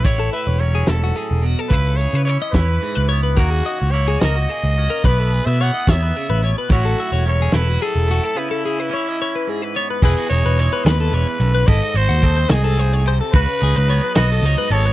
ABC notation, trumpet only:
X:1
M:6/8
L:1/16
Q:3/8=72
K:C#m
V:1 name="Trumpet"
c2 B2 c2 A4 z2 | B2 c2 c2 B4 z2 | F4 c2 d6 | B3 e f2 e4 z2 |
F4 c2 B2 A4 | E8- E2 z2 | G2 c4 B6 | d2 ^B4 G4 z2 |
B6 d4 c2 |]